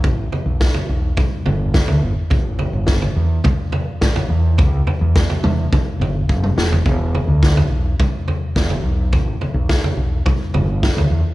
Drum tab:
SD |----o-------o---|----o-------o---|----o---------o-|----o-------o---|
T2 |--------o-------|--------o-------|------o-o----o--|--------o-------|
FT |o-o--o--o-o--o--|o-o--o--o-o--o--|o-o--o--o-o----o|o-o--o--o-o--o--|
BD |o---o---o---o---|o---o---o---o---|o---o---o---o---|o---o---o---o---|

SD |----o-------o---|
T2 |--------o-------|
FT |o-o--o--o-o--o--|
BD |o---o---o---o---|